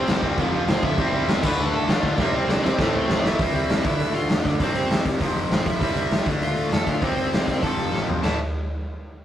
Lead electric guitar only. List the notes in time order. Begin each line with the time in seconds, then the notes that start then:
Already playing: C4 C5
0.69 C4 C5
0.84 E4 E5
1.14 E4 E5
1.44 B4 B5
1.74 A4 A5
1.89 F4 F5
2.05 F4 F5
2.21 E4 E5
2.35 C4 C5
2.49 D4 D5
2.64 C4 C5
3.10 C4 C5
3.26 E4 E5
3.55 E4 E5
3.84 E4 E5
4.15 F4 F5
4.45 D4 D5
4.61 D4 D5
4.76 C4 C5
5.52 C4 C5
5.67 E4 E5
5.97 E4 E5
6.43 F4 F5
6.73 A4 A5
6.89 F4 F5
7.03 C4 C5
7.63 A4 A5
8.23 A5